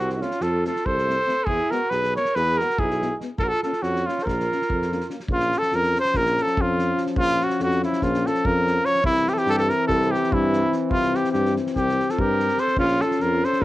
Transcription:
Already playing: C2 C4 F#4
0.10 F#4, snare
0.16 C#4 E4
0.21 A3 C4 F4, snare
0.31 snare
0.41 F2 F4 A4, snare
0.64 A3 C4 F4 A4, snare
0.76 snare
0.86 C2 A4 C5, kick
0.98 snare
1.06 A3 C4
1.10 snare
1.26 A3 C4, snare
1.45 E2 E4 G#4, kick
1.71 G#3 B3 F#4 A#4, snare
1.90 B1 G#4 B4, snare
2.03 snare
2.13 G#3 B3 A#4 C#5, snare
2.25 snare
2.35 E2 G#4 B4, snare
2.57 G#3 B3 F#4 A#4, snare
2.70 snare
2.78 B1 E4 G#4, kick
2.91 snare
3.01 G#3 B3, snare
3.17 G#3, snare
3.22 B3
3.38 A#1 F4 A4, kick
3.44 F#4 A#4
3.48 A4
3.53 F4
3.63 A#3 C#4 F4 A4, snare
3.73 snare
3.82 F2 C#4 F#4, snare
3.96 snare
4.06 A#3 C#4 F4, snare
4.18 C5, snare
4.23 A#1 A4 A#4
4.27 F4, kick, snare
4.40 snare
4.50 A#3 C#4, snare
4.62 snare
4.70 F2, kick
4.82 snare
4.91 A#3 C#4, snare
5.00 snare
5.08 C#4, snare
5.12 A#3
5.20 snare
5.27 A#1 F3 C#4, kick
5.33 F4
5.40 snare
5.52 snare
5.58 A4
5.62 snare
5.72 F2 A#4, snare
5.83 snare
5.95 snare
6.00 C5
6.05 snare
6.14 A#1 A#4, kick, snare
6.26 snare
6.37 snare
6.42 A4
6.47 snare
6.57 F2 F4, kick
6.79 snare
6.97 snare
7.06 snare
7.16 A#1 F4, kick
7.28 snare
7.40 F#4, snare
7.49 snare
7.59 F2 F#4, snare
7.71 snare
7.83 E4, snare
7.92 snare
8.01 A#1 F4, kick, snare
8.14 snare
8.26 A4, snare
8.34 snare
8.45 F2 A#4, kick
8.67 snare
8.85 C#5, snare
8.95 snare
9.03 C2 E3 C4 E4, kick
9.15 snare
9.27 G4, snare
9.34 A4, snare
9.38 G4
9.46 G2 A4, snare
9.53 G4
9.58 A4, snare
9.69 A#4, snare
9.88 C2 A4, kick, snare
10.02 snare
10.11 G4, snare
10.24 snare
10.32 G2 E4, kick
10.53 snare
10.72 snare
10.90 C2 F4, kick
11.02 snare
11.14 G4, snare
11.24 snare
11.32 G2 G4, snare
11.46 snare
11.56 snare
11.67 snare
11.76 C2 G4, kick, snare
11.89 snare
12.00 snare
12.09 F4 A4, snare
12.18 G2 G4 A#4, kick
12.40 snare
12.48 snare
12.58 C5, snare
12.62 A4
12.68 snare
12.76 A#1 F3 C#4 F4, kick
12.88 snare
13.01 F4 A4, snare
13.11 snare
13.20 F2 F4 A#4, snare
13.44 A4 C5, snare
13.53 snare
13.61 A#1

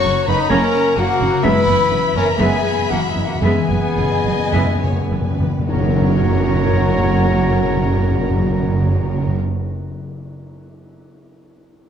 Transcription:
Already playing: F#2 C#3 C#4 F#4 C#5 A#5 C#6
0.04 F#1 F#2 C#4 F#4 A#4
0.18 C#5
0.27 F#1 F#2 C#4 D#4 B4 F#5 B5
0.41 A#5
0.49 F#1 F#2 A#3 C#4 A#4 C#5 F#5 A#5
0.64 C#5
0.86 F#4
0.96 F#1 F#2 A#3 C#4 F#4 F#5
1.10 C#3
1.20 F#1 F#2 C#4
1.34 C#3
1.43 F#1 F#2 G#3 B3 E4 B4 E5 B5
1.53 F#2
1.58 E3
1.66 F#1 F#2 B3
1.70 B3
1.76 F#2
1.81 F#2 E4
1.90 F#1 F#2 B3 E4
1.98 F#2
2.06 F#2 E4
2.13 F#1 F#2 B3 C#4 A#4 A#5
2.18 F#2 G#5
2.30 F#2 B5
2.38 F#1 F#2 G#3 B3 E5 G#5 B5
2.42 F#2 G#4
2.53 F#2 B4
2.62 F#2 E4
2.71 F#2
2.78 F#2 B3
2.87 F#1 F#2 B3 E4 F#4 F#5
2.91 F#2 E3 A#3 F#5
3.02 F#2 B3
3.08 F#2 G#3 E4 E5
3.16 F#1 F#2 E3 B3
3.25 F#2 A#3 F#4 F#5
3.30 B3
3.35 F#2
3.41 F#1 F#2 G#3 B3 G#4 E5 G#5 B5
3.53 F#2 E3
3.62 F#2
3.69 F#1 F#2 B3
3.78 F#2
3.85 F#2 E4
3.96 F#1 F#2 B3 E4 B4 D#5
4.03 F#2
4.12 F#2 E4
4.21 F#1 F#2
4.26 F#2 B3
4.30 F#2
4.39 F#2 B5
4.48 F#2
4.52 F#1 F#2 G#3 B3 E5 B5
4.57 F#2
4.65 F#2
4.75 F#2
4.81 F#2 E4 C#5
4.92 F#2 B3
5.02 F#2
5.10 F#1 F#2 E3 B3 E4 B4
5.22 F#2 B3
5.30 F#2
5.39 F#1 F#2 E3 B3
5.50 F#2
5.55 B3
5.59 F#2
5.68 F#1 F#2 C#4 F#4 A#4 C#5 F#5 A#5, tam-tam
5.76 F#2 F#3
5.82 F#2 C#4
5.88 F#2 F#4
5.95 F#2 A#4
6.01 F#2 F#5
6.08 F#2
6.15 F#2
6.21 F#2
6.28 F#2
6.35 F#2
6.41 F#2
6.48 F#2
6.54 F#2
6.60 F#2
6.67 F#2
6.73 F#2
6.80 F#2
6.86 F#2
6.92 F#2
6.99 F#2
7.05 F#2
7.11 F#2
7.18 F#2
7.24 F#2
7.31 F#2
7.38 F#2
7.44 F#2
7.50 F#2
7.57 F#2
7.63 F#2
7.70 F#2
7.76 F#2
7.83 F#2
7.90 F#2
7.97 F#2
8.04 F#2
8.11 F#2
8.18 F#2
8.24 F#2
8.31 F#2
8.37 F#2
8.43 F#2
8.50 F#2
8.56 F#2
8.62 F#2
8.69 F#2
8.75 F#2
8.81 F#2
8.88 F#2
8.95 F#2
9.02 F#2
9.08 F#2
9.15 F#2
9.21 F#2
9.28 F#2

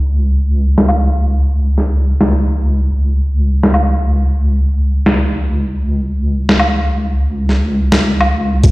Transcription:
Already playing: C#2
0.78 snare
0.88 low woodblock
1.78 snare
2.21 snare
2.92 C#2
3.63 snare
3.74 low woodblock
5.06 snare
6.49 snare
6.60 low woodblock
7.49 snare
7.92 snare
8.21 low woodblock
8.64 C#2, kick, closed hi-hat

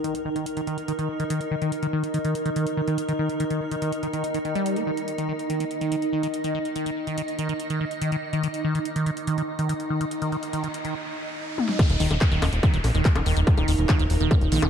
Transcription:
Already playing: D#4 A#4 D#5 D#6
0.04 D#3, closed hi-hat
0.15 closed hi-hat
0.25 D#3
0.36 D#3, closed hi-hat
0.46 closed hi-hat
0.57 D#3, closed hi-hat
0.67 D#3, closed hi-hat
0.78 closed hi-hat
0.88 D#3, closed hi-hat
0.99 D#3, closed hi-hat
1.20 D#3, closed hi-hat
1.30 D#3, closed hi-hat
1.41 closed hi-hat
1.51 D#3
1.62 D#3, closed hi-hat
1.72 closed hi-hat
1.83 D#3, closed hi-hat
1.93 D#3
2.04 closed hi-hat
2.14 D#3, closed hi-hat
2.25 D#3, closed hi-hat
2.35 closed hi-hat
2.46 D#3, closed hi-hat
2.56 D#3, closed hi-hat
2.67 closed hi-hat
2.77 D#3
2.88 D#3, closed hi-hat
2.98 closed hi-hat
3.09 D#3, closed hi-hat
3.19 D#3
3.30 closed hi-hat
3.40 D#3, closed hi-hat
3.50 D#3, closed hi-hat
3.71 D#3, closed hi-hat
3.82 D#3, closed hi-hat
3.92 closed hi-hat
4.03 D#3, closed hi-hat
4.13 D#3, closed hi-hat
4.24 closed hi-hat
4.34 D#3, closed hi-hat
4.45 D#3, closed hi-hat
4.55 G3, closed hi-hat
4.66 closed hi-hat
4.76 A#3, closed hi-hat
4.87 D#3
4.97 closed hi-hat
5.08 D#5, closed hi-hat
5.18 D#3, closed hi-hat
5.29 D#3
5.39 closed hi-hat
5.50 D#3, closed hi-hat
5.60 D#3, closed hi-hat
5.71 closed hi-hat
5.81 D#3, closed hi-hat
5.92 D#3, closed hi-hat
6.02 closed hi-hat
6.13 D#3
6.23 D#3, closed hi-hat
6.34 closed hi-hat
6.44 D#3, closed hi-hat
6.55 D#3
6.65 closed hi-hat
6.76 D#3, closed hi-hat
6.86 D#3 D6, closed hi-hat
7.07 D#3, closed hi-hat
7.18 D#3, closed hi-hat
7.28 closed hi-hat
7.39 D#3, closed hi-hat
7.49 D#3, closed hi-hat
7.60 closed hi-hat
7.70 D#3, closed hi-hat
7.81 D#3
7.91 closed hi-hat
8.02 D#3, closed hi-hat
8.12 D#3, closed hi-hat
8.33 D#3, closed hi-hat
8.43 D#3, closed hi-hat, riser
8.54 closed hi-hat
8.64 D#3
8.75 D#3, closed hi-hat
8.85 closed hi-hat
8.96 D#3, closed hi-hat
9.06 D#3, closed hi-hat
9.17 closed hi-hat
9.27 D#3, closed hi-hat
9.38 D#3, closed hi-hat
9.59 D#3, closed hi-hat
9.69 D#3, closed hi-hat
9.80 closed hi-hat
9.90 D#3
10.01 D#3, closed hi-hat
10.11 closed hi-hat
10.22 D#3, closed hi-hat
10.32 D#3, closed hi-hat
10.43 closed hi-hat
10.53 D#3, closed hi-hat
10.64 D#3, closed hi-hat
10.74 closed hi-hat
10.85 D#3, closed hi-hat
11.58 high tom
11.69 snare
11.79 D#3 D#4 A#4, kick, closed hi-hat, crash, downlifter
11.90 D#1, closed hi-hat
12.00 D#1 D#3, open hi-hat
12.11 D#1 D#3, closed hi-hat, high bongo
12.21 kick, clap, closed hi-hat
12.32 D#1 D#3, closed hi-hat
12.42 D#1 D#3 D#6, open hi-hat, high bongo
12.53 D#1, closed hi-hat
12.63 D#3, kick, closed hi-hat
12.74 D#1 D#3, closed hi-hat
12.84 A#1, open hi-hat, high bongo
12.95 D#1 D#3, closed hi-hat
13.05 D#3, kick, clap, closed hi-hat
13.16 D#1, closed hi-hat, high bongo
13.26 D#1 D#3, open hi-hat
13.37 D#1 D#3, closed hi-hat
13.47 kick, closed hi-hat
13.57 D#1 D#3, closed hi-hat, high bongo
13.68 D#1 D#3, open hi-hat
13.78 D#1, closed hi-hat
13.89 D#3, kick, clap, closed hi-hat, high bongo
13.99 D#1 D#3, closed hi-hat
14.10 D#1, open hi-hat
14.20 D#1 D#3, closed hi-hat
14.31 D#3, kick, closed hi-hat, high bongo
14.41 D#1, closed hi-hat
14.52 A#1 D#3, open hi-hat
14.62 D#1 D#3, closed hi-hat, high bongo

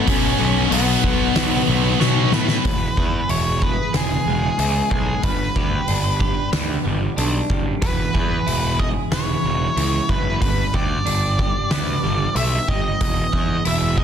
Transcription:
0.06 B1 B2 F#3 B3 C#4 C#5, kick, open hi-hat
0.39 B1 B2 F#3 B3
0.71 B1 B2 F#3 B3 B4, open hi-hat
1.03 B1 B2 F#3 B3, kick
1.35 B1 B2 F#3 B3, snare, open hi-hat
1.67 B1 B2 F#3 B3
1.99 B2 F#3 B3 C#5, snare
2.32 A2 B2 F#3 B3 B4, snare
2.48 snare
2.65 E1 E2, kick, open hi-hat
2.97 E2 G#4, kick
3.29 E1 E4 C#5, open hi-hat
3.62 G#4 B4, kick
3.94 E1 B3 G#4, snare, open hi-hat
4.26 E1 G#3
4.58 C#2 E4, open hi-hat
4.91 B1 G#3 G#4, kick
5.23 G1 G2 B4, kick, open hi-hat
5.56 D2 G4, kick
5.88 G1 D4, open hi-hat
6.20 G4, kick
6.52 D2 B3, snare, open hi-hat
6.85 G1 G3
7.17 B1 D4, open hi-hat
7.50 F#1 G3, kick
7.82 E1 E2 B4, kick, open hi-hat
8.14 E2 G#4, kick
8.47 E1 E4, open hi-hat
8.79 G#4 D#5, kick
9.12 E1 B3 C#5, snare, open hi-hat
9.44 E1 E3
9.76 C#2 E4, open hi-hat
10.09 F#1 E3 B4, kick
10.41 G1 G2 B4, kick, open hi-hat
10.74 D2 G4 D5, kick
11.06 G1 D4, open hi-hat
11.39 G4, kick
11.71 D2 B3, snare, open hi-hat
12.03 G1 G3
12.35 B1 E5, open hi-hat
12.68 G1 G3 D#5, kick
13.00 E1 E2, kick, open hi-hat
13.32 E2 G#4, kick
13.65 E1 E4 E5, open hi-hat
13.97 G#4 D#5, kick

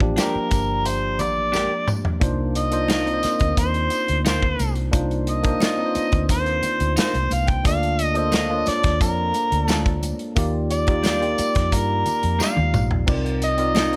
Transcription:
Already playing: G4
0.00 A1 F3 A#3 D4 G4, kick
0.16 F3 A#3 D4 G4 A#4, snare, closed hi-hat, tambourine, high conga
0.21 A#4
0.35 muted fingered electric bass stroke
0.51 G1, kick, closed hi-hat, tambourine, muted conga
0.86 C5, closed hi-hat, tambourine
1.19 A1 D5, closed hi-hat, tambourine, muted conga, low conga
1.52 D4 G4 A#4, snare, tambourine, high conga
1.88 mid tom, tambourine, high conga
2.05 floor tom
2.20 C2 A#3 D4 D#4 F4 C5, kick, closed hi-hat, muted conga
2.55 D#5, closed hi-hat, tambourine
2.71 A#3 D4 D#4 F4 C5, closed hi-hat
2.88 D#4 F4 A#4, snare, closed hi-hat, tambourine, high conga
3.04 A#3 C4 D#4 F4 A#4, closed hi-hat
3.14 C5
3.23 muted fingered electric bass stroke, snare, closed hi-hat, tambourine, muted conga
3.40 D2, kick, closed hi-hat
3.57 D#2 C5, kick, closed hi-hat, tambourine
3.74 closed hi-hat
3.90 closed hi-hat, tambourine
4.08 D2, closed hi-hat
4.25 D#4 F4 A#4 C5, snare, closed hi-hat, tambourine, high conga
4.42 kick, high conga
4.59 C2, closed hi-hat, tambourine, high conga
4.75 closed hi-hat
4.91 C2 A#3 D4 D#4 F4 C5, kick, closed hi-hat, muted conga
5.11 closed hi-hat
5.27 D#5, closed hi-hat
5.43 A#3 D4 D#4 F4 C5, kick, closed hi-hat
5.60 D#4 F4 A#4, snare, closed hi-hat, tambourine, high conga
5.77 A#3 C4 D#4 F4 B4
5.86 C5
5.95 muted fingered electric bass stroke, closed hi-hat, tambourine, muted conga
6.12 D2, kick, closed hi-hat
6.29 D#2 C5, kick, closed hi-hat, tambourine
6.46 closed hi-hat
6.62 closed hi-hat, tambourine, muted conga, low conga
6.80 D2, closed hi-hat
6.96 D#4 F4 A#4 C5, snare, closed hi-hat, tambourine, high conga
7.14 C2, closed hi-hat, high conga
7.30 C2 F5, closed hi-hat, tambourine, high conga
7.47 G5, kick, closed hi-hat
7.64 D2 A#3 D4 F4 A4 D5 F5, kick, closed hi-hat, tambourine, muted conga
7.83 closed hi-hat
7.99 closed hi-hat, tambourine
8.04 D#5
8.14 A#3 D4 F4 A4 C5, closed hi-hat
8.18 D#5
8.32 A3 D4 F4, snare, closed hi-hat, tambourine, high conga
8.49 A#3 D4 F4 C#5 A5
8.59 D5
8.66 D5, muted fingered electric bass stroke, snare, closed hi-hat, tambourine, muted conga
8.83 D#2, kick, snare, closed hi-hat
9.01 F2 A#4, kick, closed hi-hat, tambourine
9.34 closed hi-hat, tambourine, muted conga
9.52 D2, closed hi-hat
9.67 A3 D4 F4 A4, snare, closed hi-hat, tambourine, high conga
9.86 kick, closed hi-hat, high conga
10.03 closed hi-hat, tambourine, high conga
10.19 closed hi-hat
10.36 D#2 A#3 D#4 F4 G4 D5, kick, closed hi-hat, tambourine, muted conga
10.71 D5, closed hi-hat, tambourine
10.87 A#3 D#4 F4 G4 D5, kick, closed hi-hat
11.03 G3 D4 F4, snare, closed hi-hat, tambourine, high conga
11.20 A#3 D#4 F4 G4 D5, closed hi-hat
11.38 muted fingered electric bass stroke, closed hi-hat, tambourine, muted conga
11.55 F2, kick, snare, closed hi-hat
11.72 G2 A#4, kick, closed hi-hat, tambourine
12.06 closed hi-hat, tambourine, muted conga, low conga
12.23 F2, closed hi-hat
12.39 G3 D4 F4 F5, snare, tambourine, high conga
12.57 D#2, high tom, high conga
12.74 A#1, mid tom, tambourine, high conga
12.91 floor tom
13.06 C2 C4 D#4 F4 A#4 D5, kick, crash, tambourine, muted conga
13.26 closed hi-hat
13.42 D#5, closed hi-hat, tambourine
13.58 C4 D#4 F4 A#4 D5, closed hi-hat
13.75 A#3 D#4 F4, snare, closed hi-hat, tambourine, high conga
13.92 C4 D#4, closed hi-hat

